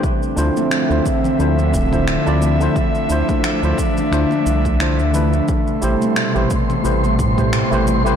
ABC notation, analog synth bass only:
X:1
M:4/4
L:1/16
Q:"Swing 16ths" 1/4=88
K:Ddor
V:1 name="Analog synth bass" clef=bass
z2 D,, z2 D,, z2 D,,2 D,,,3 D,,3 | z2 D,, z2 D,, z2 D,, z C,,3 D,,3 | z2 A,,, z2 A,,, z2 A,,,2 A,,3 A,,,3 |]